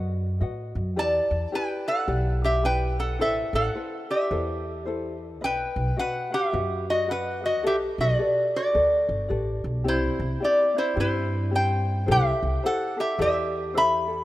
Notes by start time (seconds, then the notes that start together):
Already playing: F#2 F#4 B4 D#5 F#5
0.41 A2 F#4 B4 D#5 F#5
0.75 F#2
0.96 E2 E4 G4 B4 D5 A5
1.31 E2
1.52 E4 G4 B4 D5 G5
1.88 A4 F#5
2.07 B1 E4 G4 B4 D5
2.44 G4 E5
2.63 E4 G4 B4 D5 G5
3.00 A4 F#5
3.19 A1 E4 A4 B4 C5 E5
3.53 A1 A4 F#5
3.75 E4 A4 B4 C5
4.11 G4 E5
4.31 E2 E4 A4 B4 C5
4.85 E4 A4 B4 C5
5.41 B1 B4 D#5 G5
5.45 B4
5.76 B1
5.97 F#4 B4 D#5 F#5
6.30 F#4 G4 B4 E5 F#5
6.52 F#2 F#4 B4 D#5 F#5
6.90 F#4 D#5
7.07 F#4 B4 D#5 F#5
7.11 B4 F#5
7.41 F#4 B4 F#5
7.46 F#4 D#5
7.63 B1 G4 A4 B4 D5 E5
7.98 B1 F#4 D5
8.18 G4 A4 B4 D5
8.56 F#4 D5
8.73 D2 A4 B4 D5
9.09 G1
9.29 A1 G4 A4 B4 D5
9.64 B1
9.84 C2 C4 E4 G4 D5
9.88 E4 C5
10.20 C2
10.40 C4 E4 G4 D5
10.44 G4 D5
10.74 C4 E4 D5
10.79 C5
10.96 G2 C4 E4 G4 D5
11.00 E4 C5
11.51 C4 E4 G4 D5
11.55 C5 G5
12.06 C2 E4 G4 A4 C5
12.11 G4 E5
12.43 C2
12.63 E4 G4 A4 C5 F#5
12.97 E4 G4 A4 E5
13.18 E2 E4 G4 A4 C5
13.22 E5
13.74 E4 G4 A4 C5 E5 B5
14.08 E4 G4 A4